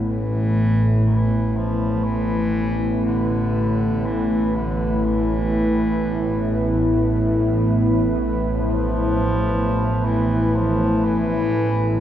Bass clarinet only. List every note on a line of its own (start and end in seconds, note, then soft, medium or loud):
0.07 1.02 E3 loud
1.06 1.58 E3 medium
1.57 2.06 F3 medium
2.04 3.04 E3 loud
3.06 4.07 D3 medium
4.06 4.57 E3 loud
4.55 5.07 D3 medium
5.05 7.55 E3 medium
8.54 10.07 F3 loud
10.05 10.57 E3 medium
10.56 11.06 F3 medium
11.04 12.00 E3 loud